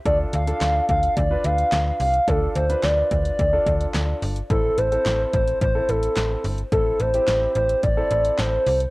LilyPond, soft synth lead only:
\new Staff \with { instrumentName = "Soft synth lead" } { \time 4/4 \key a \minor \tempo 4 = 108 d''8 f''4 f''8 d''8 f''4 f''8 | a'8 c''8 d''8 d''2 r8 | a'8 c''4 c''8 c''8 a'4 r8 | a'8 c''4 c''8 d''4 c''8. r16 | }